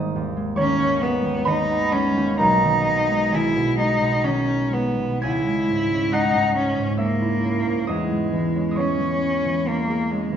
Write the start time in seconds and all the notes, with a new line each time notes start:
Already playing: G#1 D#3 D#5 D#6
0.16 D#2
0.37 G#3
0.56 D#3 C#4 C#5 C#6
0.80 D#2
1.02 G#3 B3
1.25 D#2
1.45 D#3 D#4 B4 B5
1.70 B3
1.93 G#3 C#4
2.17 D#2
2.38 B1 D#4 A#4 A#5
2.64 D#3
2.87 B2
3.10 G#3
3.32 D#3 E4 G#4 G#5
3.56 B2
3.78 G#3 D#4
4.02 B2
4.24 D#3 C#4
4.48 D#4
4.73 G#3 B3
4.99 B2
5.22 C#2 E4 G#5 G#6
5.48 G#3
5.70 G#2
5.93 C#4
6.12 G#3 D#4 F#5 F#6
6.35 G#2
6.56 C#4
6.78 G#2
6.97 G#3 A#3 E5 E6
7.22 E4
7.44 C#4
7.67 G#2
7.87 E2 G#3 D#5 D#6
8.12 G#3
8.33 E3
8.56 C#4
8.71 D#6
8.76 G#3 C#5 C#6
8.80 C#4
9.00 E3
9.22 C#4
9.45 E3
9.67 G#3 A#3
9.90 G#4
10.11 G#3 C#4
10.32 E3